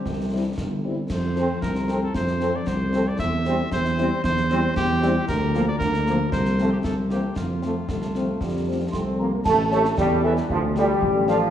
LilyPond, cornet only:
\new Staff \with { instrumentName = "Cornet" } { \time 2/4 \key f \major \tempo 4 = 115 g'4 r4 | c''4 bes'8. a'16 | c''8. d''16 c''8. d''16 | e''4 c''4 |
c''4 g'4 | bes'8. d''16 bes'4 | c''8. g'16 a'8 g'8 | f'2~ |
f'4. r8 | r8 e''8 r8 e''8 | r8 f''8 r8 f''8 | }